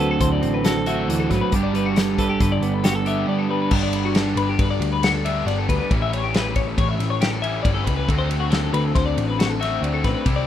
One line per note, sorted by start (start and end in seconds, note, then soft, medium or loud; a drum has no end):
0.00 0.19 D2 medium
0.00 0.85 D3 loud
0.00 1.08 D3 medium
0.00 1.29 F#3 medium
0.00 0.88 A3 medium
0.00 0.40 C4 medium
0.00 0.85 C4 loud
0.00 0.86 F#4 medium
0.00 0.87 F#4 medium
0.00 0.65 A4 medium
0.11 0.21 A4 medium
0.19 0.41 D2 loud
0.19 1.49 A2 medium
0.19 0.32 C5 medium
0.19 kick loud
0.19 closed hi-hat loud
0.32 0.54 D5 medium
0.42 1.05 A1 medium
0.42 1.49 C4 medium
0.42 closed hi-hat medium
0.54 0.65 B4 medium
0.64 0.76 F#4 medium
0.64 1.55 A4 medium
0.64 snare loud
0.64 closed hi-hat loud
0.76 0.87 A4 medium
0.86 1.52 D3 medium
0.86 1.53 A3 medium
0.86 1.52 C4 medium
0.86 1.54 F#4 loud
0.86 1.55 F#4 medium
0.86 1.08 E5 medium
0.86 closed hi-hat medium
1.08 1.29 D2 medium
1.08 1.31 E3 medium
1.08 1.19 D5 medium
1.08 snare soft
1.08 closed hi-hat loud
1.20 1.30 A4 medium
1.30 1.41 G#1 medium
1.30 1.52 F#3 medium
1.30 1.40 B4 medium
1.30 kick medium
1.30 snare soft
1.30 closed hi-hat medium
1.41 1.52 B4 medium
1.52 2.36 G1 loud
1.52 3.26 G2 medium
1.52 3.05 G2 medium
1.52 3.05 D3 medium
1.52 3.05 G3 medium
1.52 3.06 B3 medium
1.52 3.05 D4 medium
1.52 3.05 G4 loud
1.52 kick loud
1.52 closed hi-hat loud
1.63 1.74 D5 medium
1.73 3.48 G3 medium
1.73 1.86 B4 medium
1.73 closed hi-hat medium
1.86 1.97 F#4 medium
1.96 2.19 A4 medium
1.96 snare loud
1.96 closed hi-hat medium
2.18 2.84 A4 medium
2.18 2.29 B4 medium
2.18 kick medium
2.18 closed hi-hat medium
2.29 2.40 G4 medium
2.40 2.60 G1 loud
2.40 3.69 D3 medium
2.40 2.51 B4 medium
2.40 kick loud
2.40 snare soft
2.40 closed hi-hat medium
2.52 2.74 D5 medium
2.61 3.23 G1 medium
2.61 3.69 B3 medium
2.61 closed hi-hat medium
2.74 2.85 B4 medium
2.84 2.95 F#4 medium
2.84 2.95 G4 medium
2.84 snare loud
2.84 closed hi-hat loud
2.95 3.72 A4 medium
2.95 3.06 A4 medium
3.06 3.69 G2 medium
3.06 3.70 D3 medium
3.06 3.71 G3 medium
3.06 3.71 B3 medium
3.06 3.71 D4 medium
3.06 3.70 G4 medium
3.06 3.28 E5 medium
3.06 closed hi-hat medium
3.27 5.90 G2 medium
3.27 3.39 D5 medium
3.39 3.50 A4 medium
3.49 3.69 G3 medium
3.49 3.60 B4 medium
3.62 3.72 B4 medium
3.71 4.33 G1 loud
3.71 5.23 G2 medium
3.71 5.23 D3 loud
3.71 5.24 G3 loud
3.71 5.24 B3 loud
3.71 5.23 D4 loud
3.71 kick loud
3.71 crash loud
3.83 3.94 D5 medium
3.93 4.05 B4 medium
3.93 ride medium
4.05 4.16 F#4 medium
4.15 4.38 A4 medium
4.15 snare loud
4.15 ride loud
4.36 4.57 G1 medium
4.36 4.48 B4 medium
4.36 ride medium
4.49 4.60 G4 medium
4.59 4.79 G1 loud
4.59 4.70 B4 medium
4.59 kick loud
4.59 ride loud
4.70 4.92 D5 medium
4.80 5.42 D2 medium
4.80 ride medium
4.92 5.03 B4 medium
5.03 5.14 F#4 loud
5.03 snare loud
5.03 ride loud
5.14 5.25 A4 medium
5.25 5.90 G2 medium
5.25 5.90 D3 medium
5.25 5.90 G3 medium
5.25 5.89 B3 medium
5.25 5.89 D4 medium
5.25 5.46 E5 medium
5.25 ride medium
5.46 5.67 G1 medium
5.46 5.58 D5 medium
5.46 snare soft
5.46 ride loud
5.58 5.69 A4 medium
5.69 5.79 D2 medium
5.69 5.79 B4 medium
5.69 kick medium
5.69 ride medium
5.80 5.91 B4 medium
5.91 6.74 A1 loud
5.91 7.42 A2 loud
5.91 7.42 E3 loud
5.91 7.43 G3 loud
5.91 7.43 C#4 loud
5.91 7.42 E4 loud
5.91 kick loud
5.91 ride medium
6.02 6.13 E5 medium
6.13 6.24 C#5 medium
6.13 ride medium
6.24 6.35 G4 medium
6.34 6.56 B4 medium
6.34 snare loud
6.34 ride loud
6.56 6.68 C#5 medium
6.56 kick medium
6.56 ride medium
6.68 6.78 A4 medium
6.78 6.98 A1 loud
6.78 6.88 C#5 medium
6.78 kick loud
6.78 ride loud
6.88 7.10 E5 medium
6.99 7.60 A1 medium
6.99 snare soft
6.99 ride medium
7.10 7.21 C#5 medium
7.21 7.31 G4 loud
7.21 snare loud
7.21 ride loud
7.31 7.42 A4 medium
7.42 8.08 A2 medium
7.42 8.07 E3 medium
7.42 8.08 G3 medium
7.42 8.08 C#4 loud
7.42 8.07 E4 medium
7.42 7.62 E5 medium
7.42 ride medium
7.63 7.85 G1 medium
7.63 7.74 D5 medium
7.63 kick loud
7.63 ride loud
7.74 7.84 A4 medium
7.84 8.07 C#2 loud
7.84 7.95 B4 medium
7.84 kick medium
7.84 ride medium
7.96 8.08 B4 medium
8.08 8.70 D2 loud
8.08 9.59 D3 loud
8.08 9.60 A3 loud
8.08 9.60 C4 loud
8.08 9.59 F#4 loud
8.08 kick loud
8.08 ride loud
8.18 8.30 C5 medium
8.30 8.40 A4 medium
8.30 ride medium
8.40 8.50 F#4 medium
8.51 8.73 A4 medium
8.51 snare loud
8.51 ride loud
8.73 8.94 D2 loud
8.73 8.84 B4 medium
8.73 ride medium
8.84 8.95 A4 medium
8.95 9.15 D2 loud
8.95 9.05 C5 medium
8.95 kick loud
8.95 snare soft
8.95 ride loud
9.06 9.27 D5 medium
9.17 9.78 A1 medium
9.17 ride medium
9.28 9.39 B4 medium
9.39 9.49 F#4 loud
9.39 snare loud
9.39 ride loud
9.50 9.61 A4 medium
9.60 10.24 D3 medium
9.60 10.25 A3 medium
9.60 10.25 C4 medium
9.60 10.24 F#4 medium
9.60 9.83 E5 medium
9.60 snare soft
9.60 ride medium
9.81 10.02 D2 medium
9.81 9.94 D5 medium
9.81 ride loud
9.94 10.04 A4 medium
10.04 10.14 A1 medium
10.04 10.13 B4 medium
10.04 kick medium
10.04 snare soft
10.04 ride medium
10.14 10.26 B4 medium
10.24 10.47 C2 loud
10.24 10.47 C3 loud
10.24 10.47 G3 loud
10.24 10.47 C4 medium
10.24 10.47 E4 loud
10.24 kick loud
10.24 ride loud
10.36 10.47 D5 medium